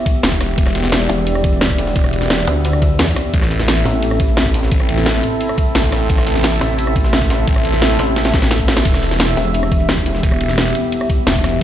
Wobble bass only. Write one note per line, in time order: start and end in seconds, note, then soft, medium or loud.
1.09 1.94 E1 loud
2.47 2.98 D2 loud
2.99 3.15 E2 medium
3.85 4.70 A1 loud
6.61 7.46 A1 loud
7.99 8.32 A1 loud
8.34 8.84 A1 loud
9.37 10.22 E1 loud